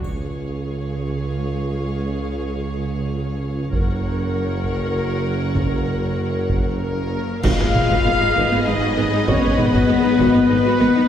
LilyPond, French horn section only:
\new Staff \with { instrumentName = "French horn section" } { \time 3/4 \key cis \mixolydian \tempo 4 = 98 <gis eis'>2.~ | <gis eis'>2. | <ais fis'>2.~ | <ais fis'>2 ais4 |
eis'2 dis'4 | cis'8 b4. b4 | }